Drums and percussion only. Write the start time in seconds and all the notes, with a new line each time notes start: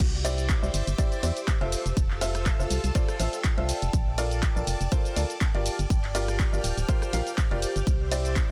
0.00 kick, closed hi-hat, crash, shaker
0.25 open hi-hat, ride, shaker
0.38 closed hi-hat, shaker
0.49 kick, clap, closed hi-hat, shaker
0.63 shaker
0.74 open hi-hat, ride, shaker
0.87 closed hi-hat, shaker
0.98 kick, closed hi-hat, shaker
1.12 closed hi-hat, shaker
1.23 open hi-hat, ride, shaker
1.37 closed hi-hat, shaker
1.48 kick, clap, closed hi-hat, shaker
1.61 closed hi-hat
1.72 open hi-hat, ride, shaker
1.86 closed hi-hat, shaker
1.97 kick, closed hi-hat, shaker
2.11 clap
2.21 open hi-hat, ride, shaker
2.35 cross-stick, closed hi-hat, shaker
2.46 kick, clap, closed hi-hat, shaker
2.60 shaker
2.70 open hi-hat, ride, shaker
2.84 closed hi-hat, shaker
2.95 kick, closed hi-hat, shaker
3.08 cross-stick, closed hi-hat, shaker
3.20 open hi-hat, ride, shaker
3.33 closed hi-hat, shaker
3.44 kick, clap, closed hi-hat, shaker
3.58 closed hi-hat
3.69 open hi-hat, ride, shaker
3.82 closed hi-hat, shaker
3.93 kick, closed hi-hat, shaker
4.18 open hi-hat, ride, shaker
4.31 closed hi-hat, shaker
4.43 kick, clap, closed hi-hat, shaker
4.57 shaker
4.67 open hi-hat, ride, shaker
4.81 closed hi-hat, shaker
4.92 kick, closed hi-hat, shaker
5.05 closed hi-hat, shaker
5.16 open hi-hat, ride, shaker
5.30 closed hi-hat, shaker
5.41 kick, clap, closed hi-hat, shaker
5.55 closed hi-hat
5.66 open hi-hat, ride, shaker
5.79 closed hi-hat, shaker
5.90 kick, closed hi-hat, shaker
6.04 clap, closed hi-hat
6.15 open hi-hat, ride, shaker
6.28 cross-stick, closed hi-hat, shaker
6.39 kick, clap, closed hi-hat, shaker
6.54 shaker
6.64 open hi-hat, ride, shaker
6.77 closed hi-hat, shaker
6.89 kick, closed hi-hat, shaker
7.02 cross-stick, closed hi-hat, shaker
7.13 open hi-hat, ride, shaker
7.27 closed hi-hat, shaker
7.38 kick, clap, closed hi-hat, shaker
7.51 closed hi-hat
7.62 open hi-hat, ride, shaker
7.76 closed hi-hat, shaker
7.87 kick, closed hi-hat, shaker
8.12 open hi-hat, ride, shaker
8.25 closed hi-hat, shaker
8.36 kick, clap, closed hi-hat, shaker